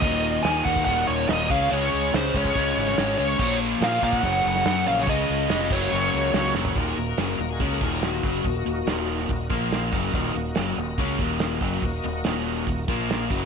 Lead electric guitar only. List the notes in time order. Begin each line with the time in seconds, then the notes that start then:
Already playing: D#5
0.43 G#5
0.64 F#5
0.85 F#5
1.07 C#5
1.28 D#5
1.51 F5
1.71 C#5
2.15 C5
2.37 C#5
3.18 C#5
3.84 F5
4.04 F5
4.15 F#5
4.88 F5
5.01 C#5
5.10 D#5
5.73 C#5